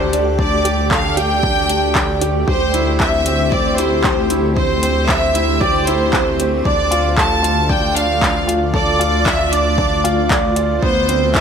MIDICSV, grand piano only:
0, 0, Header, 1, 2, 480
1, 0, Start_track
1, 0, Key_signature, -1, "minor"
1, 0, Tempo, 521739
1, 358, Time_signature, 4, 2, 24, 8
1, 10494, End_track
2, 0, Start_track
2, 0, Title_t, "Grand piano"
2, 0, Program_c, 0, 0
2, 0, Control_c, 0, 64, 127
2, 0, Note_on_c, 0, 62, 80
2, 0, Note_on_c, 0, 67, 78
2, 0, Note_on_c, 0, 69, 88
2, 101, Note_off_c, 0, 62, 0
2, 115, Note_on_c, 0, 62, 75
2, 344, Note_off_c, 0, 62, 0
2, 357, Note_on_c, 0, 62, 80
2, 586, Note_off_c, 0, 62, 0
2, 595, Note_off_c, 0, 67, 0
2, 595, Note_on_c, 0, 67, 69
2, 733, Note_off_c, 0, 67, 0
2, 835, Note_off_c, 0, 69, 0
2, 835, Note_on_c, 0, 69, 71
2, 1065, Note_off_c, 0, 69, 0
2, 1077, Note_on_c, 0, 67, 75
2, 1305, Note_off_c, 0, 67, 0
2, 1319, Note_on_c, 0, 62, 79
2, 1542, Note_off_c, 0, 62, 0
2, 1556, Note_on_c, 0, 62, 72
2, 1783, Note_off_c, 0, 62, 0
2, 1797, Note_on_c, 0, 62, 75
2, 2025, Note_off_c, 0, 62, 0
2, 2038, Note_on_c, 0, 67, 72
2, 2175, Note_off_c, 0, 67, 0
2, 2277, Note_on_c, 0, 67, 77
2, 2289, Control_c, 0, 64, 0
2, 2433, Control_c, 0, 64, 127
2, 2505, Note_off_c, 0, 67, 0
2, 2519, Note_on_c, 0, 64, 73
2, 2746, Note_off_c, 0, 64, 0
2, 2759, Note_on_c, 0, 60, 73
2, 2984, Note_off_c, 0, 60, 0
2, 2998, Note_on_c, 0, 60, 74
2, 3224, Note_off_c, 0, 60, 0
2, 3237, Note_on_c, 0, 60, 82
2, 3466, Note_off_c, 0, 60, 0
2, 3480, Note_on_c, 0, 64, 76
2, 3616, Note_off_c, 0, 64, 0
2, 3720, Note_on_c, 0, 67, 75
2, 3947, Note_off_c, 0, 67, 0
2, 3958, Note_on_c, 0, 64, 68
2, 4186, Note_off_c, 0, 64, 0
2, 4201, Note_on_c, 0, 60, 76
2, 4427, Note_off_c, 0, 60, 0
2, 4441, Note_on_c, 0, 60, 71
2, 4667, Note_off_c, 0, 60, 0
2, 4683, Note_on_c, 0, 60, 72
2, 4908, Note_off_c, 0, 60, 0
2, 4921, Note_on_c, 0, 64, 75
2, 5056, Note_off_c, 0, 64, 0
2, 5163, Note_on_c, 0, 67, 84
2, 5388, Note_off_c, 0, 67, 0
2, 5405, Note_on_c, 0, 64, 82
2, 5629, Note_off_c, 0, 64, 0
2, 5642, Note_on_c, 0, 60, 80
2, 5868, Note_off_c, 0, 60, 0
2, 5884, Note_on_c, 0, 60, 76
2, 6109, Note_off_c, 0, 60, 0
2, 6120, Note_on_c, 0, 62, 78
2, 6130, Control_c, 0, 64, 0
2, 6274, Control_c, 0, 64, 127
2, 6347, Note_off_c, 0, 62, 0
2, 6359, Note_on_c, 0, 65, 79
2, 6495, Note_off_c, 0, 65, 0
2, 6598, Note_on_c, 0, 69, 76
2, 6826, Note_off_c, 0, 69, 0
2, 6833, Note_on_c, 0, 65, 77
2, 7063, Note_off_c, 0, 65, 0
2, 7076, Note_on_c, 0, 62, 87
2, 7302, Note_off_c, 0, 62, 0
2, 7316, Note_on_c, 0, 62, 78
2, 7543, Note_off_c, 0, 62, 0
2, 7557, Note_on_c, 0, 62, 76
2, 7785, Note_off_c, 0, 62, 0
2, 7798, Note_on_c, 0, 65, 73
2, 7935, Note_off_c, 0, 65, 0
2, 8037, Note_on_c, 0, 69, 79
2, 8266, Note_off_c, 0, 69, 0
2, 8274, Note_on_c, 0, 65, 78
2, 8504, Note_off_c, 0, 65, 0
2, 8517, Note_on_c, 0, 62, 71
2, 8745, Note_off_c, 0, 62, 0
2, 8758, Note_on_c, 0, 62, 75
2, 8983, Note_off_c, 0, 62, 0
2, 8997, Note_on_c, 0, 62, 86
2, 9225, Note_off_c, 0, 62, 0
2, 9240, Note_on_c, 0, 65, 93
2, 9467, Note_off_c, 0, 65, 0
2, 9481, Note_on_c, 0, 74, 99
2, 9616, Note_off_c, 0, 74, 0
2, 9719, Note_on_c, 0, 65, 71
2, 9946, Note_off_c, 0, 65, 0
2, 9962, Note_on_c, 0, 59, 81
2, 9971, Control_c, 0, 64, 0
2, 10135, Control_c, 0, 64, 127
2, 10188, Note_off_c, 0, 59, 0
2, 10201, Note_on_c, 0, 60, 75
2, 10336, Note_off_c, 0, 60, 0
2, 10442, Note_on_c, 0, 64, 70
2, 10494, Note_off_c, 0, 64, 0
2, 10494, End_track
0, 0, End_of_file